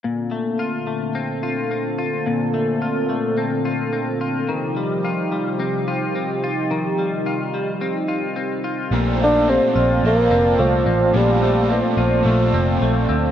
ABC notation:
X:1
M:4/4
L:1/16
Q:1/4=108
K:Bb
V:1 name="Celesta"
z16 | z16 | z16 | z16 |
z4 G6 z6 | z16 |]
V:2 name="Analog synth pad"
[B,,D,CA]16- | [B,,D,CA]16 | [C,F,EG]16- | [C,F,EG]16 |
[cdfa]16- | [cdfa]16 |]
V:3 name="Clean electric guitar"
B,,2 A,2 F2 A,2 C2 F2 C2 F2 | B,,2 A,2 F2 A,2 C2 F2 C2 F2 | E,2 G,2 F2 G,2 C2 F2 C2 F2 | E,2 G,2 F2 G,2 C2 F2 C2 F2 |
B,,2 A,2 C2 F4 C2 A,2 C2 | B,,2 A,2 C2 F2 A,2 C2 A,2 C2 |]
V:4 name="Overdriven electric guitar"
z16 | z16 | z16 | z16 |
[B,,D,A,CFA]2 [A,CFA]6 [CFA]8 | [B,,D,A,CFA]2 [A,CFA]6 [A,CFA]8 |]
V:5 name="Bassoon" clef=bass
z16 | z16 | z16 | z16 |
z2 D2 C4 B,4 F,4 | G,4 F,8 z4 |]
V:6 name="Picked electric bass" clef=bass
z16 | z16 | z16 | z16 |
B,,,4- B,,, z B,,,2 B,,,2 F,,,2 C,,2 A,,,2 | B,,,4- B,,, z B,,,2 B,,,2 F,,,2 B,,,2 D,,2 |]